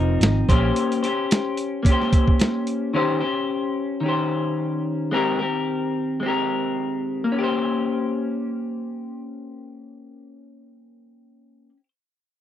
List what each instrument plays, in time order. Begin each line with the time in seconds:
Already playing: picked electric bass F1, clean electric guitar F3 C4 D#4 A#4
0.21 picked electric bass G#1, snare, closed hi-hat
0.49 picked electric bass A#1, clean electric guitar A#3 C#4 G4 C5, kick, closed hi-hat
0.76 closed hi-hat
0.92 closed hi-hat
1.03 clean electric guitar C#4 G4 C5, closed hi-hat
1.31 snare, closed hi-hat
1.57 closed hi-hat
1.83 clean electric guitar A#3 C#4, kick, closed hi-hat
1.89 clean electric guitar G4 C5
2.02 snare
2.13 kick, closed hi-hat
2.28 kick
2.40 snare, closed hi-hat
2.67 closed hi-hat
2.94 clean electric guitar D#3 C#4 G4 C5
3.20 clean electric guitar C#4 G4 C5
4.00 clean electric guitar D#3 C#4
4.06 clean electric guitar G4 C5
5.11 clean electric guitar G#3 C4 G4 A#4
5.39 clean electric guitar C4 G4 A#4
6.20 clean electric guitar G#3 C4
6.26 clean electric guitar G4 A#4
7.24 clean electric guitar A#3
7.32 clean electric guitar C#4
7.38 clean electric guitar G4
7.44 clean electric guitar C5